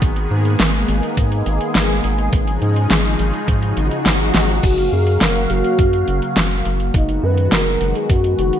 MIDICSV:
0, 0, Header, 1, 6, 480
1, 0, Start_track
1, 0, Key_signature, 6, "major"
1, 0, Tempo, 576923
1, 17, Time_signature, 4, 2, 24, 8
1, 7152, End_track
2, 0, Start_track
2, 0, Title_t, "Analog synth lead"
2, 0, Program_c, 0, 81
2, 3856, Note_on_c, 0, 66, 93
2, 4094, Note_on_c, 0, 68, 101
2, 4107, Note_off_c, 0, 66, 0
2, 4334, Note_on_c, 0, 70, 110
2, 4347, Note_off_c, 0, 68, 0
2, 4574, Note_on_c, 0, 66, 102
2, 4586, Note_off_c, 0, 70, 0
2, 5535, Note_off_c, 0, 66, 0
2, 5778, Note_on_c, 0, 63, 96
2, 6019, Note_on_c, 0, 71, 110
2, 6031, Note_off_c, 0, 63, 0
2, 6254, Note_off_c, 0, 71, 0
2, 6259, Note_on_c, 0, 70, 108
2, 6620, Note_on_c, 0, 68, 96
2, 6632, Note_off_c, 0, 70, 0
2, 6739, Note_on_c, 0, 66, 97
2, 6751, Note_off_c, 0, 68, 0
2, 6975, Note_off_c, 0, 66, 0
2, 6980, Note_on_c, 0, 66, 94
2, 7152, Note_off_c, 0, 66, 0
2, 7152, End_track
3, 0, Start_track
3, 0, Title_t, "Analog synth pad"
3, 0, Program_c, 1, 89
3, 0, Note_on_c, 1, 51, 80
3, 0, Note_on_c, 1, 56, 74
3, 0, Note_on_c, 1, 59, 74
3, 17, Note_on_c, 1, 58, 76
3, 17, Note_on_c, 1, 68, 93
3, 1903, Note_off_c, 1, 51, 0
3, 1903, Note_off_c, 1, 59, 0
3, 1918, Note_off_c, 1, 58, 0
3, 1935, Note_on_c, 1, 63, 73
3, 1936, Note_on_c, 1, 49, 83
3, 1936, Note_on_c, 1, 53, 73
3, 3823, Note_off_c, 1, 56, 0
3, 3824, Note_off_c, 1, 68, 0
3, 3837, Note_off_c, 1, 49, 0
3, 3837, Note_off_c, 1, 63, 0
3, 3838, Note_off_c, 1, 53, 0
3, 3857, Note_on_c, 1, 49, 83
3, 3857, Note_on_c, 1, 54, 73
3, 3857, Note_on_c, 1, 58, 75
3, 3857, Note_on_c, 1, 66, 91
3, 3857, Note_on_c, 1, 77, 76
3, 5758, Note_off_c, 1, 49, 0
3, 5758, Note_off_c, 1, 58, 0
3, 5758, Note_off_c, 1, 66, 0
3, 5758, Note_off_c, 1, 77, 0
3, 5777, Note_on_c, 1, 56, 76
3, 5777, Note_on_c, 1, 66, 90
3, 5778, Note_on_c, 1, 51, 79
3, 5778, Note_on_c, 1, 59, 75
3, 7152, Note_off_c, 1, 51, 0
3, 7152, Note_off_c, 1, 54, 0
3, 7152, Note_off_c, 1, 56, 0
3, 7152, Note_off_c, 1, 59, 0
3, 7152, Note_off_c, 1, 66, 0
3, 7152, End_track
4, 0, Start_track
4, 0, Title_t, "Analog synth bass"
4, 0, Program_c, 2, 38
4, 16, Note_on_c, 2, 32, 93
4, 227, Note_off_c, 2, 32, 0
4, 257, Note_on_c, 2, 44, 94
4, 467, Note_off_c, 2, 44, 0
4, 496, Note_on_c, 2, 32, 80
4, 707, Note_off_c, 2, 32, 0
4, 737, Note_on_c, 2, 32, 93
4, 842, Note_off_c, 2, 32, 0
4, 976, Note_on_c, 2, 44, 80
4, 1187, Note_off_c, 2, 44, 0
4, 1218, Note_on_c, 2, 32, 95
4, 1323, Note_off_c, 2, 32, 0
4, 1458, Note_on_c, 2, 32, 85
4, 1668, Note_off_c, 2, 32, 0
4, 1697, Note_on_c, 2, 32, 86
4, 1908, Note_off_c, 2, 32, 0
4, 1936, Note_on_c, 2, 32, 97
4, 2147, Note_off_c, 2, 32, 0
4, 2178, Note_on_c, 2, 44, 94
4, 2388, Note_off_c, 2, 44, 0
4, 2418, Note_on_c, 2, 32, 82
4, 2628, Note_off_c, 2, 32, 0
4, 2657, Note_on_c, 2, 32, 91
4, 2762, Note_off_c, 2, 32, 0
4, 2896, Note_on_c, 2, 44, 80
4, 3107, Note_off_c, 2, 44, 0
4, 3137, Note_on_c, 2, 32, 96
4, 3242, Note_off_c, 2, 32, 0
4, 3378, Note_on_c, 2, 32, 83
4, 3588, Note_off_c, 2, 32, 0
4, 3617, Note_on_c, 2, 32, 86
4, 3827, Note_off_c, 2, 32, 0
4, 3855, Note_on_c, 2, 30, 91
4, 4067, Note_off_c, 2, 30, 0
4, 4097, Note_on_c, 2, 42, 93
4, 4307, Note_off_c, 2, 42, 0
4, 4336, Note_on_c, 2, 30, 79
4, 4547, Note_off_c, 2, 30, 0
4, 4576, Note_on_c, 2, 30, 94
4, 4682, Note_off_c, 2, 30, 0
4, 4815, Note_on_c, 2, 42, 80
4, 5026, Note_off_c, 2, 42, 0
4, 5058, Note_on_c, 2, 30, 94
4, 5162, Note_off_c, 2, 30, 0
4, 5297, Note_on_c, 2, 30, 84
4, 5507, Note_off_c, 2, 30, 0
4, 5538, Note_on_c, 2, 30, 84
4, 5748, Note_off_c, 2, 30, 0
4, 5776, Note_on_c, 2, 30, 97
4, 5987, Note_off_c, 2, 30, 0
4, 6016, Note_on_c, 2, 42, 94
4, 6227, Note_off_c, 2, 42, 0
4, 6257, Note_on_c, 2, 30, 79
4, 6467, Note_off_c, 2, 30, 0
4, 6496, Note_on_c, 2, 30, 92
4, 6602, Note_off_c, 2, 30, 0
4, 6736, Note_on_c, 2, 42, 81
4, 6947, Note_off_c, 2, 42, 0
4, 6976, Note_on_c, 2, 30, 96
4, 7082, Note_off_c, 2, 30, 0
4, 7152, End_track
5, 0, Start_track
5, 0, Title_t, "Swell"
5, 0, Program_c, 3, 103
5, 2897, Note_on_c, 3, 60, 58
5, 3857, Note_off_c, 3, 60, 0
5, 7152, End_track
6, 0, Start_track
6, 0, Title_t, "Drums"
6, 16, Note_on_c, 9, 36, 114
6, 16, Note_on_c, 9, 42, 85
6, 99, Note_off_c, 9, 42, 0
6, 100, Note_off_c, 9, 36, 0
6, 135, Note_on_c, 9, 42, 37
6, 219, Note_off_c, 9, 42, 0
6, 376, Note_on_c, 9, 42, 37
6, 459, Note_off_c, 9, 42, 0
6, 496, Note_on_c, 9, 38, 108
6, 496, Note_on_c, 9, 42, 85
6, 580, Note_off_c, 9, 38, 0
6, 580, Note_off_c, 9, 42, 0
6, 616, Note_on_c, 9, 42, 38
6, 699, Note_off_c, 9, 42, 0
6, 736, Note_on_c, 9, 42, 63
6, 819, Note_off_c, 9, 42, 0
6, 857, Note_on_c, 9, 42, 37
6, 940, Note_off_c, 9, 42, 0
6, 976, Note_on_c, 9, 36, 107
6, 976, Note_on_c, 9, 42, 87
6, 1059, Note_off_c, 9, 36, 0
6, 1060, Note_off_c, 9, 42, 0
6, 1096, Note_on_c, 9, 42, 36
6, 1180, Note_off_c, 9, 42, 0
6, 1217, Note_on_c, 9, 42, 58
6, 1300, Note_off_c, 9, 42, 0
6, 1336, Note_on_c, 9, 42, 39
6, 1420, Note_off_c, 9, 42, 0
6, 1456, Note_on_c, 9, 38, 106
6, 1456, Note_on_c, 9, 42, 85
6, 1539, Note_off_c, 9, 38, 0
6, 1539, Note_off_c, 9, 42, 0
6, 1577, Note_on_c, 9, 42, 38
6, 1660, Note_off_c, 9, 42, 0
6, 1697, Note_on_c, 9, 42, 61
6, 1780, Note_off_c, 9, 42, 0
6, 1817, Note_on_c, 9, 42, 37
6, 1900, Note_off_c, 9, 42, 0
6, 1936, Note_on_c, 9, 36, 110
6, 1937, Note_on_c, 9, 42, 93
6, 2019, Note_off_c, 9, 36, 0
6, 2020, Note_off_c, 9, 42, 0
6, 2058, Note_on_c, 9, 42, 38
6, 2142, Note_off_c, 9, 42, 0
6, 2178, Note_on_c, 9, 42, 35
6, 2261, Note_off_c, 9, 42, 0
6, 2298, Note_on_c, 9, 42, 39
6, 2381, Note_off_c, 9, 42, 0
6, 2417, Note_on_c, 9, 38, 104
6, 2417, Note_on_c, 9, 42, 90
6, 2500, Note_off_c, 9, 38, 0
6, 2500, Note_off_c, 9, 42, 0
6, 2537, Note_on_c, 9, 42, 40
6, 2620, Note_off_c, 9, 42, 0
6, 2655, Note_on_c, 9, 42, 66
6, 2739, Note_off_c, 9, 42, 0
6, 2776, Note_on_c, 9, 42, 37
6, 2859, Note_off_c, 9, 42, 0
6, 2895, Note_on_c, 9, 42, 91
6, 2896, Note_on_c, 9, 36, 109
6, 2978, Note_off_c, 9, 42, 0
6, 2979, Note_off_c, 9, 36, 0
6, 3016, Note_on_c, 9, 42, 38
6, 3100, Note_off_c, 9, 42, 0
6, 3136, Note_on_c, 9, 42, 61
6, 3219, Note_off_c, 9, 42, 0
6, 3256, Note_on_c, 9, 42, 40
6, 3339, Note_off_c, 9, 42, 0
6, 3376, Note_on_c, 9, 38, 110
6, 3376, Note_on_c, 9, 42, 89
6, 3459, Note_off_c, 9, 38, 0
6, 3459, Note_off_c, 9, 42, 0
6, 3496, Note_on_c, 9, 42, 37
6, 3579, Note_off_c, 9, 42, 0
6, 3615, Note_on_c, 9, 38, 85
6, 3615, Note_on_c, 9, 42, 62
6, 3698, Note_off_c, 9, 38, 0
6, 3698, Note_off_c, 9, 42, 0
6, 3736, Note_on_c, 9, 42, 38
6, 3819, Note_off_c, 9, 42, 0
6, 3855, Note_on_c, 9, 36, 113
6, 3856, Note_on_c, 9, 42, 93
6, 3856, Note_on_c, 9, 49, 73
6, 3938, Note_off_c, 9, 36, 0
6, 3939, Note_off_c, 9, 42, 0
6, 3939, Note_off_c, 9, 49, 0
6, 3975, Note_on_c, 9, 42, 39
6, 4059, Note_off_c, 9, 42, 0
6, 4215, Note_on_c, 9, 42, 40
6, 4299, Note_off_c, 9, 42, 0
6, 4335, Note_on_c, 9, 38, 110
6, 4335, Note_on_c, 9, 42, 95
6, 4419, Note_off_c, 9, 38, 0
6, 4419, Note_off_c, 9, 42, 0
6, 4456, Note_on_c, 9, 42, 40
6, 4539, Note_off_c, 9, 42, 0
6, 4575, Note_on_c, 9, 42, 66
6, 4658, Note_off_c, 9, 42, 0
6, 4695, Note_on_c, 9, 42, 40
6, 4778, Note_off_c, 9, 42, 0
6, 4815, Note_on_c, 9, 36, 117
6, 4815, Note_on_c, 9, 42, 91
6, 4898, Note_off_c, 9, 36, 0
6, 4898, Note_off_c, 9, 42, 0
6, 4936, Note_on_c, 9, 42, 40
6, 5019, Note_off_c, 9, 42, 0
6, 5055, Note_on_c, 9, 42, 64
6, 5138, Note_off_c, 9, 42, 0
6, 5176, Note_on_c, 9, 42, 41
6, 5259, Note_off_c, 9, 42, 0
6, 5296, Note_on_c, 9, 38, 112
6, 5296, Note_on_c, 9, 42, 91
6, 5380, Note_off_c, 9, 38, 0
6, 5380, Note_off_c, 9, 42, 0
6, 5416, Note_on_c, 9, 42, 38
6, 5500, Note_off_c, 9, 42, 0
6, 5536, Note_on_c, 9, 42, 65
6, 5619, Note_off_c, 9, 42, 0
6, 5657, Note_on_c, 9, 42, 40
6, 5741, Note_off_c, 9, 42, 0
6, 5776, Note_on_c, 9, 36, 118
6, 5776, Note_on_c, 9, 42, 93
6, 5859, Note_off_c, 9, 36, 0
6, 5859, Note_off_c, 9, 42, 0
6, 5897, Note_on_c, 9, 42, 40
6, 5980, Note_off_c, 9, 42, 0
6, 6136, Note_on_c, 9, 42, 41
6, 6220, Note_off_c, 9, 42, 0
6, 6256, Note_on_c, 9, 38, 120
6, 6256, Note_on_c, 9, 42, 90
6, 6339, Note_off_c, 9, 38, 0
6, 6339, Note_off_c, 9, 42, 0
6, 6377, Note_on_c, 9, 42, 41
6, 6460, Note_off_c, 9, 42, 0
6, 6496, Note_on_c, 9, 42, 67
6, 6580, Note_off_c, 9, 42, 0
6, 6617, Note_on_c, 9, 42, 40
6, 6700, Note_off_c, 9, 42, 0
6, 6736, Note_on_c, 9, 36, 122
6, 6737, Note_on_c, 9, 42, 96
6, 6819, Note_off_c, 9, 36, 0
6, 6820, Note_off_c, 9, 42, 0
6, 6857, Note_on_c, 9, 42, 39
6, 6940, Note_off_c, 9, 42, 0
6, 6977, Note_on_c, 9, 42, 64
6, 7060, Note_off_c, 9, 42, 0
6, 7097, Note_on_c, 9, 42, 42
6, 7152, Note_off_c, 9, 42, 0
6, 7152, End_track
0, 0, End_of_file